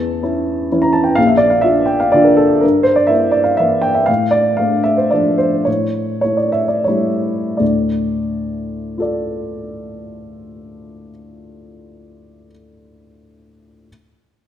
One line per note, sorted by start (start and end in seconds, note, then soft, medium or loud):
0.00 0.21 E2 soft
0.00 0.82 A5 medium
0.23 0.67 C#4 soft
0.23 0.67 E4 soft
0.72 1.14 E3 soft
0.72 1.14 C#4 soft
0.72 1.14 E4 soft
0.82 0.94 A#5 medium
0.93 1.05 A5 soft
1.04 1.16 G5 soft
1.15 1.63 A#1 soft
1.15 1.28 F5 medium
1.27 1.39 E5 soft
1.37 1.50 D5 medium
1.50 1.63 F5 soft
1.61 2.10 D4 soft
1.61 2.10 F4 soft
1.61 1.87 E5 medium
1.86 2.00 G5 medium
2.00 2.13 F5 medium
2.12 2.59 D3 soft
2.12 2.59 D4 soft
2.12 2.60 F4 soft
2.12 2.25 D5 medium
2.24 2.38 A#4 soft
2.37 2.62 A4 medium
2.61 3.09 G2 soft
2.61 2.85 A#4 medium
2.83 2.97 C5 medium
2.96 3.09 D5 medium
3.07 3.55 A#3 soft
3.07 3.55 E4 soft
3.07 3.33 E5 medium
3.31 3.45 D5 medium
3.44 3.58 F5 soft
3.57 4.04 E3 soft
3.57 4.05 A#3 soft
3.57 4.05 E4 soft
3.57 3.83 E5 medium
3.82 3.95 G5 medium
3.94 4.07 E5 soft
4.06 4.57 A2 soft
4.06 4.32 F5 medium
4.31 4.57 D5 medium
4.57 5.08 A3 soft
4.57 5.09 D4 soft
4.57 4.84 F5 medium
4.83 4.98 E5 medium
4.97 5.11 C5 soft
5.11 5.63 F3 soft
5.11 5.63 A3 soft
5.11 5.64 D4 soft
5.11 5.39 D5 medium
5.38 5.66 C5 medium
5.65 6.22 A2 soft
5.65 6.20 C#5 medium
6.21 6.84 A3 soft
6.21 6.84 E4 soft
6.21 6.38 C#5 medium
6.37 6.54 D5 soft
6.52 6.70 E5 medium
6.68 6.87 D5 soft
6.84 7.55 G3 soft
6.84 7.56 A3 soft
6.84 7.56 E4 soft
6.84 7.58 C#5 soft
7.57 11.09 D2 soft
7.57 11.09 A2 soft
7.57 9.00 D5 soft
8.98 12.47 F4 soft
8.98 12.49 A4 soft
8.98 12.51 D5 soft